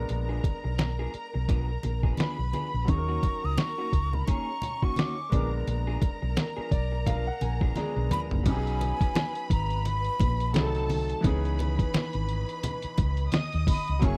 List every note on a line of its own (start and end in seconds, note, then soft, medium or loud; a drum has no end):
0.00 2.47 G#3 medium
0.00 2.48 B3 medium
0.00 2.49 D4 medium
0.00 2.14 A#4 medium
0.00 2.54 A#4 medium
0.00 2.14 A#5 medium
0.09 0.39 A#1 medium
0.09 muted clean electric guitar stroke soft
0.09 closed hi-hat medium
0.09 muted conga soft
0.29 0.42 F3 medium
0.29 0.43 B3 medium
0.29 0.43 D4 medium
0.29 0.43 G#4 medium
0.43 muted clean electric guitar stroke soft
0.43 kick medium
0.43 closed hi-hat medium
0.43 muted conga soft
0.64 1.06 B1 medium
0.64 muted clean electric guitar stroke soft
0.78 muted clean electric guitar stroke soft
0.78 snare loud
0.78 closed hi-hat medium
0.78 high conga medium
0.99 1.13 F3 medium
0.99 1.13 B3 medium
0.99 1.14 D4 medium
0.99 1.14 G#4 medium
1.14 muted clean electric guitar stroke soft
1.14 muted fingered electric bass stroke soft
1.14 closed hi-hat medium
1.34 1.76 B1 medium
1.34 muted clean electric guitar stroke soft
1.48 1.69 F3 medium
1.48 1.69 B3 medium
1.48 1.69 D4 medium
1.48 1.69 A#4 medium
1.48 kick medium
1.48 closed hi-hat medium
1.48 muted conga medium
1.48 low conga medium
1.83 2.13 A#1 medium
1.83 muted clean electric guitar stroke soft
1.83 closed hi-hat medium
1.83 muted conga soft
2.03 2.15 F3 soft
2.03 2.15 B3 soft
2.03 2.15 D4 soft
2.03 2.15 G#4 medium
2.03 kick medium
2.17 2.39 F3 medium
2.17 2.38 B3 medium
2.17 2.38 D4 medium
2.17 2.37 G#4 medium
2.17 2.87 B4 medium
2.17 2.87 B5 medium
2.17 2.91 B5 medium
2.17 muted fingered electric bass stroke soft
2.17 snare loud
2.17 closed hi-hat medium
2.17 high conga medium
2.39 2.51 B1 medium
2.39 muted clean electric guitar stroke soft
2.53 2.69 F3 medium
2.53 2.69 B3 medium
2.53 2.69 D4 medium
2.53 2.70 G#4 medium
2.53 closed hi-hat medium
2.53 high conga medium
2.74 2.86 A#1 medium
2.74 muted clean electric guitar stroke soft
2.85 3.17 D#2 medium
2.85 5.26 F#3 medium
2.85 5.27 C#4 soft
2.85 5.28 D#4 medium
2.85 4.25 A#4 medium
2.85 4.25 A#5 medium
2.85 muted clean electric guitar stroke soft
2.85 kick loud
2.85 closed hi-hat medium
2.85 muted conga soft
2.89 2.97 G#4 medium
2.89 3.46 C#6 loud
2.98 5.33 A#4 medium
3.09 3.22 D#3 medium
3.09 3.23 A#3 medium
3.09 3.23 C#4 medium
3.09 3.23 F#4 medium
3.23 muted clean electric guitar stroke soft
3.23 kick medium
3.23 closed hi-hat medium
3.23 muted conga soft
3.43 3.56 C#2 medium
3.43 3.60 D#6 medium
3.43 muted clean electric guitar stroke soft
3.57 4.16 C#6 medium
3.57 muted clean electric guitar stroke soft
3.57 snare loud
3.57 closed hi-hat medium
3.57 high conga medium
3.78 3.92 D#3 medium
3.78 3.92 A#3 medium
3.78 3.92 C#4 medium
3.78 3.92 F#4 medium
3.93 4.22 C#2 medium
3.93 muted clean electric guitar stroke soft
3.93 kick medium
3.93 closed hi-hat medium
4.13 4.28 B5 medium
4.13 muted clean electric guitar stroke soft
4.13 low conga medium
4.27 4.48 D#3 medium
4.27 4.48 A#3 medium
4.27 5.30 C#4 medium
4.27 4.48 C#4 medium
4.27 4.48 G#4 medium
4.27 4.85 A#5 loud
4.27 5.30 C#6 medium
4.27 kick medium
4.27 closed hi-hat medium
4.27 muted conga medium
4.62 muted clean electric guitar stroke soft
4.62 closed hi-hat medium
4.62 muted conga soft
4.62 low conga medium
4.82 4.95 D#3 soft
4.82 4.94 A#3 soft
4.82 4.94 C#4 soft
4.82 4.94 F#4 medium
4.82 5.00 C#6 medium
4.82 kick medium
4.96 5.17 D#3 medium
4.96 5.17 A#3 medium
4.96 5.17 C#4 medium
4.96 5.16 F#4 medium
4.96 5.53 D6 medium
4.96 snare loud
4.96 closed hi-hat medium
4.96 high conga medium
5.17 muted clean electric guitar stroke soft
5.30 5.61 A#1 medium
5.30 5.48 F3 medium
5.30 7.71 G#3 medium
5.30 7.71 B3 medium
5.30 5.48 B3 medium
5.30 5.48 D4 medium
5.30 7.73 D4 medium
5.30 5.48 G#4 medium
5.30 8.41 A#4 medium
5.30 8.41 A#5 medium
5.30 kick loud
5.30 closed hi-hat medium
5.30 high conga medium
5.36 7.74 A#4 medium
5.52 muted clean electric guitar stroke soft
5.67 5.96 A#1 loud
5.67 muted clean electric guitar stroke soft
5.67 closed hi-hat medium
5.67 muted conga soft
5.87 6.00 F3 medium
5.87 6.00 B3 medium
5.87 6.01 D4 medium
5.87 6.01 G#4 medium
6.01 muted clean electric guitar stroke soft
6.01 kick medium
6.01 closed hi-hat medium
6.01 muted conga medium
6.22 6.34 B1 medium
6.22 muted clean electric guitar stroke soft
6.36 muted clean electric guitar stroke soft
6.36 snare loud
6.36 closed hi-hat medium
6.36 high conga medium
6.57 6.70 F3 medium
6.57 6.71 B3 medium
6.57 6.70 D4 medium
6.57 6.71 G#4 medium
6.57 muted fingered electric bass stroke soft
6.71 7.29 B1 medium
6.71 7.04 D5 medium
6.71 muted clean electric guitar stroke soft
6.71 kick medium
6.71 closed hi-hat medium
6.92 muted clean electric guitar stroke soft
7.06 7.27 F3 medium
7.06 7.27 B3 medium
7.06 7.27 D4 medium
7.06 7.27 A#4 medium
7.06 7.25 F5 medium
7.06 kick medium
7.06 closed hi-hat medium
7.06 muted conga soft
7.06 low conga medium
7.27 7.40 F#5 medium
7.41 7.70 A#1 medium
7.41 7.74 G#5 medium
7.41 muted clean electric guitar stroke soft
7.41 closed hi-hat medium
7.41 muted conga soft
7.61 7.73 F3 soft
7.61 7.73 B3 soft
7.61 7.73 D4 medium
7.61 7.73 G#4 medium
7.61 kick medium
7.75 7.96 F3 medium
7.75 8.45 G#3 medium
7.75 8.43 B3 soft
7.75 7.96 B3 medium
7.75 7.96 D4 medium
7.75 8.46 D4 soft
7.75 7.95 G#4 medium
7.75 8.47 G#4 medium
7.75 8.09 A#5 medium
7.75 muted fingered electric bass stroke soft
7.75 snare medium
7.75 closed hi-hat medium
7.75 high conga medium
7.96 8.08 B1 medium
7.96 muted clean electric guitar stroke soft
7.96 high tom medium
8.11 8.26 F3 medium
8.11 8.27 B3 medium
8.11 8.27 D4 medium
8.11 8.27 G#4 medium
8.11 8.43 B5 medium
8.11 8.20 B5 loud
8.11 closed hi-hat medium
8.11 mid tom medium
8.11 high conga medium
8.31 8.43 F#1 medium
8.31 muted clean electric guitar stroke soft
8.31 floor tom medium
8.43 8.91 B1 loud
8.43 10.49 F#3 medium
8.43 10.50 B3 medium
8.43 10.51 C#4 medium
8.43 10.50 B4 medium
8.43 10.50 B5 medium
8.43 kick loud
8.43 closed hi-hat medium
8.43 crash loud
8.43 muted conga soft
8.48 10.52 D#4 medium
8.48 8.55 G4 medium
8.48 9.47 G#5 loud
8.56 10.55 G#4 medium
8.67 closed hi-hat medium
8.81 closed hi-hat medium
8.81 muted conga medium
9.01 kick medium
9.01 closed hi-hat medium
9.15 snare loud
9.15 closed hi-hat medium
9.15 high conga medium
9.35 closed hi-hat medium
9.50 10.08 G#1 loud
9.50 9.88 A#5 medium
9.50 kick medium
9.50 closed hi-hat medium
9.70 closed hi-hat soft
9.85 10.90 B5 loud
9.85 closed hi-hat medium
9.85 muted conga medium
10.05 closed hi-hat soft
10.20 10.55 A#1 loud
10.20 kick loud
10.20 closed hi-hat medium
10.20 muted conga soft
10.20 low conga medium
10.40 closed hi-hat medium
10.53 11.13 C2 loud
10.53 11.23 F#3 medium
10.53 11.24 A3 medium
10.53 11.24 C4 medium
10.53 11.24 D#4 medium
10.53 10.63 G#4 medium
10.53 11.23 A4 medium
10.53 11.23 A5 medium
10.53 snare loud
10.53 closed hi-hat medium
10.53 high conga medium
10.63 11.28 A4 medium
10.75 snare soft
10.75 closed hi-hat soft
10.89 open hi-hat medium
10.89 high conga medium
11.10 closed hi-hat medium
11.21 11.82 C#2 loud
11.21 13.97 E3 medium
11.21 13.98 B3 medium
11.21 13.98 C#4 medium
11.21 13.29 B4 medium
11.21 13.29 B5 medium
11.21 kick loud
11.21 closed hi-hat medium
11.21 muted conga soft
11.25 13.99 D#4 medium
11.25 14.00 G#4 medium
11.45 closed hi-hat medium
11.59 closed hi-hat medium
11.59 muted conga medium
11.79 kick medium
11.79 closed hi-hat medium
11.94 muted fingered electric bass stroke soft
11.94 snare loud
11.94 closed hi-hat medium
11.94 high conga medium
12.13 12.43 G#1 medium
12.13 closed hi-hat medium
12.29 closed hi-hat medium
12.49 closed hi-hat soft
12.63 closed hi-hat medium
12.63 muted conga medium
12.63 low conga medium
12.82 muted fingered electric bass stroke soft
12.82 closed hi-hat soft
12.98 13.27 C#2 loud
12.98 kick medium
12.98 closed hi-hat medium
12.98 muted conga soft
13.17 closed hi-hat medium
13.32 14.01 D#5 medium
13.32 14.01 D#6 medium
13.32 muted fingered electric bass stroke medium
13.32 snare loud
13.32 closed hi-hat medium
13.32 high conga medium
13.52 13.66 D#2 medium
13.52 snare soft
13.52 closed hi-hat soft
13.67 14.07 B5 medium
13.67 kick loud
13.67 open hi-hat medium
13.67 high conga medium
13.88 14.01 C#2 medium
13.88 closed hi-hat medium
13.99 14.17 F#1 loud
13.99 14.17 F#3 medium
13.99 14.17 F#3 loud
13.99 14.17 A#3 medium
13.99 14.17 C#4 medium
13.99 14.17 E4 loud
13.99 14.17 G#4 loud
13.99 14.17 C#5 medium
13.99 14.17 C#6 medium
13.99 kick loud
13.99 closed hi-hat medium
13.99 muted conga soft
14.04 14.17 E4 medium
14.04 14.17 G#4 medium
14.04 14.17 G#5 medium